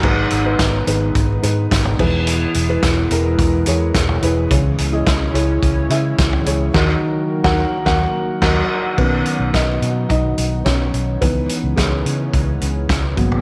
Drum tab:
CC |x-------------x-|----------------|----------------|x-----------x---|
HH |--x-x-x-x-x-x---|x-x-x-x-x-x-x-x-|x-x-x-x-x-x-x-x-|----------------|
SD |----o-------o---|----o-------o---|----o-------o---|o----o--o---o---|
FT |-------------o--|-------------o--|-------------o--|----------------|
BD |o---o---o---o-o-|----o---o---o---|o---o---o---o---|o----o--o---o---|

CC |x---------------|----------------|
HH |--x-x-x-x-x-x-x-|x-x-x-x-x-x-x-x-|
SD |----o-------o---|----o-------o---|
FT |----------------|---------------o|
BD |o---o---o---o---|o---o---o---o-o-|